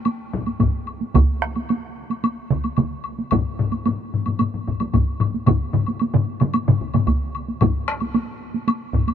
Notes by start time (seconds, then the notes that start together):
0.05 taiko high, high woodblock
0.34 taiko, taiko low-mid
0.46 taiko high, high woodblock
0.60 taiko, taiko low-mid, taiko high, high woodblock
0.87 high woodblock
1.01 taiko high
1.14 taiko, taiko mid, taiko high, high woodblock
1.42 taiko rim
1.56 taiko high, high woodblock
1.69 taiko high, high woodblock
2.10 taiko high, high woodblock
2.24 taiko high, high woodblock
2.50 taiko, taiko mid
2.64 taiko high, high woodblock
2.77 taiko, taiko mid, taiko high, high woodblock
3.04 high woodblock
3.19 taiko high
3.31 taiko, taiko low-mid, taiko high, high woodblock
3.59 taiko low-mid
3.72 taiko high, high woodblock
3.86 taiko low-mid, taiko high, high woodblock
4.14 taiko low-mid
4.26 taiko low-mid, taiko high, high woodblock
4.39 taiko low-mid, taiko high, high woodblock
4.54 taiko low-mid
4.67 taiko, taiko low-mid
4.80 taiko low-mid, taiko high, high woodblock
4.94 taiko, taiko low-mid, taiko high, high woodblock
5.20 taiko low-mid, high woodblock
5.34 taiko high
5.47 taiko, taiko low-mid, taiko mid, taiko high, high woodblock
5.73 taiko low-mid, taiko mid
5.86 taiko high, high woodblock
6.00 taiko high, high woodblock
6.14 taiko low-mid, taiko mid
6.40 taiko low-mid, taiko mid, taiko high, high woodblock
6.54 taiko high, high woodblock
6.68 taiko low-mid, taiko mid
6.81 taiko
6.94 taiko low-mid, taiko mid, taiko high, high woodblock
7.07 taiko, taiko high, high woodblock
7.35 high woodblock
7.48 taiko high
7.61 taiko, taiko low-mid, taiko high, high woodblock
7.88 taiko rim
8.00 taiko high, high woodblock
8.14 taiko high, high woodblock
8.54 taiko high
8.68 taiko high, high woodblock
8.94 taiko, taiko low-mid
9.08 taiko high, high woodblock